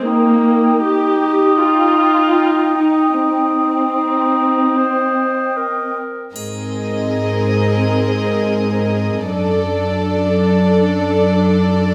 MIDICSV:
0, 0, Header, 1, 8, 480
1, 0, Start_track
1, 0, Tempo, 774194
1, 25, Time_signature, 4, 2, 24, 8
1, 1465, Tempo, 797872
1, 3865, Tempo, 737101
1, 7506, End_track
2, 0, Start_track
2, 0, Title_t, "Flute section"
2, 0, Program_c, 0, 73
2, 39, Note_on_c, 0, 79, 50
2, 3672, Note_off_c, 0, 79, 0
2, 7506, End_track
3, 0, Start_track
3, 0, Title_t, "Cor anglais"
3, 0, Program_c, 1, 69
3, 34, Note_on_c, 1, 75, 49
3, 3646, Note_off_c, 1, 75, 0
3, 7506, End_track
4, 0, Start_track
4, 0, Title_t, "Violin section"
4, 0, Program_c, 2, 48
4, 3865, Note_on_c, 2, 70, 41
4, 3866, Note_on_c, 2, 75, 43
4, 5767, Note_off_c, 2, 70, 0
4, 5768, Note_off_c, 2, 75, 0
4, 5791, Note_on_c, 2, 69, 47
4, 5794, Note_on_c, 2, 74, 44
4, 7506, Note_off_c, 2, 69, 0
4, 7506, Note_off_c, 2, 74, 0
4, 7506, End_track
5, 0, Start_track
5, 0, Title_t, "Clarinet"
5, 0, Program_c, 3, 71
5, 31, Note_on_c, 3, 63, 51
5, 2358, Note_off_c, 3, 63, 0
5, 2427, Note_on_c, 3, 63, 40
5, 2915, Note_on_c, 3, 72, 49
5, 2924, Note_off_c, 3, 63, 0
5, 3394, Note_on_c, 3, 70, 39
5, 3403, Note_off_c, 3, 72, 0
5, 3865, Note_off_c, 3, 70, 0
5, 7506, End_track
6, 0, Start_track
6, 0, Title_t, "Viola section"
6, 0, Program_c, 4, 48
6, 34, Note_on_c, 4, 58, 61
6, 517, Note_off_c, 4, 58, 0
6, 521, Note_on_c, 4, 67, 60
6, 980, Note_off_c, 4, 67, 0
6, 990, Note_on_c, 4, 65, 60
6, 1705, Note_off_c, 4, 65, 0
6, 1705, Note_on_c, 4, 63, 44
6, 1938, Note_on_c, 4, 60, 48
6, 1939, Note_off_c, 4, 63, 0
6, 3631, Note_off_c, 4, 60, 0
6, 3869, Note_on_c, 4, 60, 40
6, 3870, Note_on_c, 4, 68, 39
6, 5769, Note_off_c, 4, 60, 0
6, 5770, Note_off_c, 4, 68, 0
6, 5797, Note_on_c, 4, 62, 41
6, 5798, Note_on_c, 4, 69, 42
6, 7506, Note_off_c, 4, 62, 0
6, 7506, Note_off_c, 4, 69, 0
6, 7506, End_track
7, 0, Start_track
7, 0, Title_t, "Cello section"
7, 0, Program_c, 5, 48
7, 3867, Note_on_c, 5, 44, 43
7, 5768, Note_off_c, 5, 44, 0
7, 5794, Note_on_c, 5, 42, 44
7, 7506, Note_off_c, 5, 42, 0
7, 7506, End_track
8, 0, Start_track
8, 0, Title_t, "Drums"
8, 3868, Note_on_c, 9, 81, 29
8, 3933, Note_off_c, 9, 81, 0
8, 7506, End_track
0, 0, End_of_file